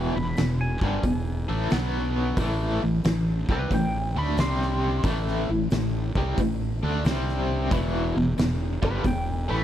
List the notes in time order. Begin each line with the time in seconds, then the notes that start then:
Already playing: E1 E2 B2 E3 G5
0.16 E1 E2 B2 B5
0.37 E1 E2 B2, snare, open hi-hat
0.61 G#5
0.81 G1 G2 D3 G3, kick
1.03 E1 E2 B2, kick, open hi-hat
1.49 A1 A2 E3 A3
1.70 B1 B2 F#3 B3, snare, open hi-hat
2.37 A1 A2 E3 A3, kick, open hi-hat
2.82 A1 A2 E3
3.04 A1 A2 E3, snare, open hi-hat
3.49 C2 C3 G3 C4 B4, kick
3.71 A1 A2 E3 G5, kick, open hi-hat
4.16 D2 D3 A3 D4 B5
4.37 C2 C3 G3 C4 C6, snare, open hi-hat
4.62 snare
5.04 A1 A2 E3 A3, kick, open hi-hat
5.28 snare
5.49 A1 A2 E3
5.70 A1 A2 E3, snare, open hi-hat
6.15 C2 C3 G3 C4, kick
6.37 A1 A2 E3, kick, open hi-hat
6.83 D2 D3 A3 D4
7.05 C2 C3 G3 C4, snare, open hi-hat
7.29 snare
7.71 E1 E2 B2 E3, kick, open hi-hat
8.15 E1 E2 B2
8.38 E1 E2 B2, snare, open hi-hat
8.82 G1 G2 D3 G3 B4, kick
9.04 E1 E2 B2 G5, kick, open hi-hat
9.49 A1 A2 E3 A3 B5